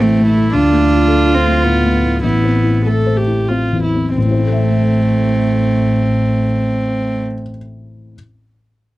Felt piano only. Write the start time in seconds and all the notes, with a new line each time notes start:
Already playing: A2 A3 E4 A4
0.03 E3
0.19 A3
0.38 E3
0.54 D2
0.72 A3
0.90 F4
1.08 A4
1.26 F4
1.46 A3
1.64 A2
1.84 A3
2.03 A2
2.23 A1
2.44 C4
2.64 E4
2.85 A4
3.06 C5
3.27 E4
3.50 C4
3.72 E2
3.95 C4
4.17 A1
4.24 A2
4.31 C4
4.38 E4
4.45 A4
4.52 E5